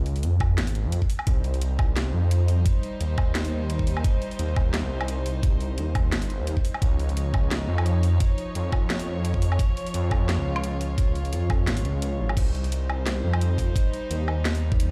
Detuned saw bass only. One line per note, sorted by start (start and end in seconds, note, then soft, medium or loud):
0.00 0.25 C#2 medium
0.24 0.59 F2 medium
0.58 0.74 G#1 medium
0.75 0.86 G#1 medium
0.85 1.00 F2 medium
1.27 2.13 C2 loud
2.13 2.65 F2 loud
3.00 4.03 D#2 medium
4.39 4.73 D#2 medium
4.74 4.83 D#2 medium
4.84 5.80 C2 medium
5.78 6.14 D#2 medium
6.13 6.29 G1 medium
6.30 6.41 G1 medium
6.40 6.55 D#2 medium
6.82 7.68 C#2 loud
7.68 8.20 F2 loud
8.56 9.59 F2 medium
9.94 10.28 F2 medium
10.29 10.37 F2 medium
10.38 11.34 C#2 medium
11.33 11.69 F2 medium
11.67 11.84 G#1 loud
11.85 12.02 C#2 medium
12.02 12.21 C#2 medium
12.20 12.36 G#1 medium
12.37 13.23 C2 loud
13.24 13.75 F2 loud
14.10 14.91 D#2 medium